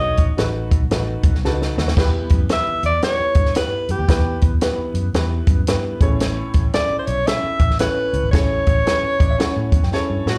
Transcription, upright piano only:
0.00 0.34 B2 medium
0.00 0.30 D#4 medium
0.00 0.27 F#4 medium
0.00 0.27 A4 medium
0.00 0.27 C#5 loud
0.37 0.79 D#4 medium
0.37 0.79 F#4 medium
0.37 0.80 A4 medium
0.37 0.80 B4 loud
0.91 1.33 D#4 medium
0.91 1.33 F#4 medium
0.91 1.33 A4 medium
0.91 1.33 B4 loud
1.45 1.53 D4 medium
1.45 1.86 F#4 medium
1.45 1.87 A4 medium
1.45 1.87 B4 loud
1.45 1.76 A5 medium
1.51 1.89 D#4 medium
1.78 1.96 F#5 medium
1.97 2.80 E3 medium
1.97 2.39 B3 loud
1.97 2.39 E4 medium
1.97 2.39 G4 loud
1.97 2.40 B4 loud
2.49 2.92 B3 medium
2.49 2.92 E4 medium
2.49 2.92 G4 medium
2.49 2.92 B4 medium
3.03 3.45 B3 medium
3.03 3.45 E4 medium
3.03 3.45 G4 medium
3.03 3.46 B4 medium
3.56 3.98 B3 medium
3.56 3.98 E4 medium
3.56 3.98 G4 medium
3.56 3.98 B4 medium
4.08 4.91 E3 medium
4.08 4.50 B3 medium
4.08 4.51 E4 medium
4.08 4.51 G4 medium
4.08 4.51 B4 loud
4.62 5.04 B3 medium
4.62 5.04 E4 medium
4.62 5.04 G4 medium
4.62 5.04 B4 loud
5.15 5.57 B3 medium
5.15 5.57 E4 medium
5.15 5.57 G4 medium
5.15 5.57 B4 loud
5.68 6.01 B3 medium
5.68 6.00 E4 medium
5.68 6.02 G4 medium
5.68 6.02 B4 loud
6.01 6.70 A2 medium
6.01 6.62 C#4 loud
6.01 6.62 E4 medium
6.01 6.63 A4 medium
6.01 6.63 C#5 loud
6.74 7.16 C#4 medium
6.74 7.16 E4 medium
6.74 7.16 A4 medium
6.74 7.17 E5 medium
7.27 7.69 C#4 medium
7.27 7.69 E4 medium
7.27 7.70 A4 medium
7.27 7.70 E5 medium
7.80 8.22 C#4 medium
7.80 8.22 E4 medium
7.80 8.23 A4 medium
7.80 8.23 C#5 medium
8.14 8.83 A2 medium
8.33 8.75 C#4 medium
8.33 8.75 E4 medium
8.33 8.76 A4 medium
8.33 8.76 C#5 loud
8.86 9.28 C#4 medium
8.86 9.28 E4 medium
8.86 9.28 A4 medium
8.86 9.29 B4 medium
9.19 9.29 D5 medium
9.30 9.39 E5 medium
9.38 9.81 C#4 loud
9.38 9.81 E4 medium
9.38 9.81 A4 medium
9.38 9.82 C#5 medium
9.38 9.80 F#5 medium
9.83 9.92 G5 medium
9.93 10.35 C#4 medium
9.93 10.35 E4 medium
9.93 10.35 A4 medium
9.93 10.35 C#5 loud
9.93 10.38 A5 medium

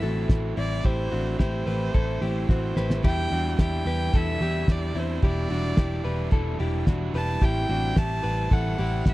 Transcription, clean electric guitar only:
0.03 0.55 F#4 medium
0.03 0.54 A4 medium
0.57 0.85 C4 medium
0.57 0.84 E4 medium
0.85 1.13 E4 medium
0.85 1.11 G4 medium
1.12 1.40 D4 soft
1.12 1.39 F#4 medium
1.39 1.66 E4 medium
1.39 1.66 G4 medium
1.67 1.95 G4 medium
1.67 1.94 B4 medium
1.94 2.21 E4 medium
1.94 2.22 A4 medium
2.22 2.50 E4 medium
2.22 2.49 G4 medium
2.50 2.77 C4 medium
2.50 2.77 F#4 medium
2.77 3.03 G4 medium
2.77 3.04 B4 medium
3.04 3.32 E4 medium
3.04 3.32 G4 medium
3.32 3.59 D4 medium
3.32 3.59 F#4 medium
3.59 3.87 E4 medium
3.59 3.86 G4 medium
3.87 4.14 G4 medium
3.87 4.14 B4 medium
4.15 4.42 E4 medium
4.15 4.41 A4 medium
4.42 4.94 E4 medium
4.42 4.93 G4 medium
4.96 5.23 C4 medium
4.96 5.23 E4 medium
5.23 5.51 E4 medium
5.23 5.50 G4 medium
5.51 5.78 D4 medium
5.51 5.77 F#4 medium
5.78 6.04 E4 medium
5.78 6.04 G4 medium
6.05 6.33 G4 medium
6.05 6.32 B4 medium
6.32 6.60 E4 medium
6.32 6.60 A4 medium
6.60 6.88 E4 medium
6.60 6.87 G4 medium
6.87 7.15 D4 medium
6.87 7.15 F#4 medium
7.15 7.41 G4 medium
7.15 7.42 B4 medium
7.42 7.70 E4 medium
7.42 7.69 G4 loud
7.69 7.97 D4 medium
7.69 7.96 F#4 medium
7.96 8.23 E4 medium
7.96 8.23 G4 medium
8.23 8.51 G4 medium
8.23 8.51 B4 medium
8.51 8.79 E4 medium
8.51 8.79 A4 medium
8.79 9.14 E4 medium
8.79 9.14 G4 medium

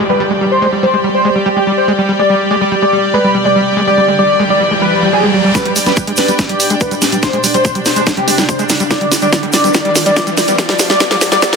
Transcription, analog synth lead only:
0.09 0.21 B4 medium
0.51 0.68 C5 loud
0.83 1.00 C5 medium
1.14 1.31 C5 medium
1.46 1.63 G4 medium
1.77 1.89 C5 medium
2.19 2.36 D5 loud
2.51 2.68 D5 loud
2.82 2.99 D5 loud
3.14 3.30 B4 loud
3.45 3.56 D5 medium
3.87 4.04 D5 loud
4.19 4.35 D5 loud
4.50 4.67 D5 medium
4.82 4.98 B4 medium
5.13 5.24 G#4 medium
5.55 5.72 B4 loud
5.86 6.03 B4 medium
6.18 6.35 B4 medium
6.49 6.66 G4 medium
6.81 6.92 B4 medium
7.23 7.40 C5 loud
7.54 7.71 C5 medium
7.86 8.02 C5 medium
8.17 8.34 G4 loud
8.49 8.60 C5 medium
8.91 9.07 D5 medium
9.22 9.39 D5 medium
9.54 9.70 D5 medium
9.75 9.91 D5 loud
10.06 10.23 D5 medium
10.37 10.54 D5 medium
10.58 10.75 D5 loud
10.90 10.99 D5 loud
11.00 11.17 D5 loud
11.32 11.41 D5 loud
11.42 11.56 D5 loud

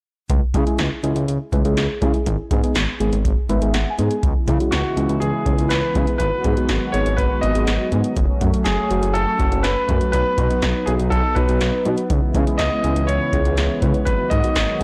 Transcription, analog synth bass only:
0.30 0.40 C#2 loud
0.54 0.64 C#3 loud
0.79 0.89 C#2 loud
1.03 1.14 C#2 medium
1.16 1.26 C#2 loud
1.28 1.38 C#2 loud
1.52 1.63 C#2 medium
1.65 1.75 C#2 medium
1.77 1.87 C#2 loud
2.02 2.12 C#3 loud
2.26 2.37 G#1 loud
2.51 2.61 G#2 loud
2.76 2.86 G#1 medium
3.00 3.10 G#1 medium
3.12 3.23 G#1 loud
3.25 3.35 G#1 loud
3.49 3.60 G#1 loud
3.62 3.72 G#1 loud
3.74 3.84 G#1 loud
3.98 4.09 G#2 loud
4.23 4.33 C#2 loud
4.48 4.58 C#3 loud
4.72 4.83 C#2 loud
4.97 5.07 C#2 medium
5.09 5.19 C#2 medium
5.21 5.32 C#2 medium
5.46 5.56 C#2 medium
5.58 5.69 C#2 medium
5.71 5.81 C#2 medium
5.95 6.05 C#3 loud
6.20 6.30 G#1 loud
6.44 6.55 G#2 medium
6.69 6.79 G#1 loud
6.93 7.04 G#1 medium
7.06 7.16 G#1 medium
7.18 7.28 G#1 medium
7.43 7.53 G#1 medium
7.55 7.65 G#1 loud
7.67 7.78 G#1 loud
7.92 8.02 G#2 loud
8.17 8.27 F#1 loud
8.41 8.51 F#2 medium
8.66 8.76 F#1 loud
8.90 9.01 F#1 loud
9.02 9.13 F#1 medium
9.15 9.25 F#1 loud
9.39 9.50 F#1 medium
9.52 9.62 F#1 medium
9.64 9.74 F#1 loud
9.89 9.99 F#2 loud
10.13 10.24 B1 loud
10.38 10.48 B2 medium
10.62 10.73 B1 loud
10.87 10.97 B1 loud
10.99 11.10 B1 medium
11.12 11.22 B1 loud
11.36 11.46 B1 medium
11.48 11.59 B1 medium
11.61 11.71 B1 loud
11.85 11.96 B2 loud
12.10 12.20 C#2 loud
12.35 12.45 C#3 loud
12.59 12.69 C#2 loud
12.84 12.94 C#2 medium
12.96 13.06 C#2 loud
13.08 13.19 C#2 loud
13.33 13.43 C#2 medium
13.45 13.55 C#2 medium
13.58 13.68 C#2 loud
13.82 13.92 C#3 loud
14.07 14.17 G#1 loud
14.31 14.42 G#2 medium
14.56 14.66 G#1 loud

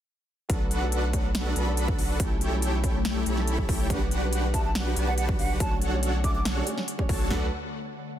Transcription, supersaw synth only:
0.50 1.54 D4 medium
0.50 1.54 F#4 medium
0.50 1.54 A4 medium
0.50 1.54 B4 medium
0.50 1.54 F#5 medium
1.56 1.96 D4 medium
1.56 1.96 F#4 medium
1.56 1.96 A4 medium
1.56 1.96 B4 medium
1.56 1.96 B5 loud
1.99 2.17 D4 medium
1.99 2.17 F#4 medium
1.99 2.17 A4 medium
1.99 2.17 B4 medium
1.99 2.17 F#5 medium
2.20 3.24 E4 medium
2.20 3.24 G4 medium
2.20 3.24 A4 medium
2.20 3.24 C#5 medium
2.20 3.24 G5 medium
3.26 3.66 E4 medium
3.26 3.66 G4 medium
3.26 3.66 A4 medium
3.26 3.66 C#5 medium
3.26 3.66 B5 loud
3.69 3.88 E4 medium
3.69 3.88 G4 medium
3.69 3.88 A4 medium
3.69 3.88 C#5 medium
3.69 3.88 G5 medium
3.90 4.94 D4 medium
3.90 4.94 F#4 medium
3.90 4.94 G4 medium
3.90 4.94 B4 medium
3.90 4.94 F#5 medium
4.96 5.37 D4 medium
4.96 5.37 F#4 medium
4.96 5.37 G4 medium
4.96 5.37 B4 medium
4.96 5.37 A5 loud
5.39 5.58 D4 medium
5.39 5.58 F#4 medium
5.39 5.58 G4 medium
5.39 5.58 B4 medium
5.39 5.58 F#5 medium
5.60 6.64 D4 medium
5.60 6.64 F#4 medium
5.60 6.64 A4 medium
5.60 6.64 C#5 medium
5.60 6.64 F#5 medium
7.09 7.28 D4 medium
7.09 7.28 F#4 medium
7.09 7.28 A4 medium
7.09 7.28 C#5 medium
7.09 7.28 A5 loud
7.31 7.46 D4 medium
7.31 7.46 F#4 medium
7.31 7.47 A4 medium
7.31 7.46 B4 medium
7.31 7.46 F#5 medium

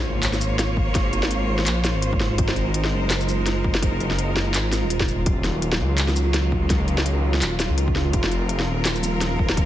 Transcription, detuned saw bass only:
0.05 1.48 G#1 medium
1.49 1.68 G#1 medium
1.67 1.94 A#1 medium
1.95 2.38 G#1 medium
2.39 2.94 G#1 loud
2.92 4.35 F#1 medium
4.36 4.56 F#1 medium
4.54 4.84 G#1 medium
4.83 5.25 D#1 loud
5.26 5.82 D#1 loud
5.80 7.23 C#2 medium
7.24 7.43 C#2 medium
7.42 7.68 D#1 medium
7.70 8.13 C#2 medium
8.14 8.69 F1 loud
8.67 9.65 D#1 medium

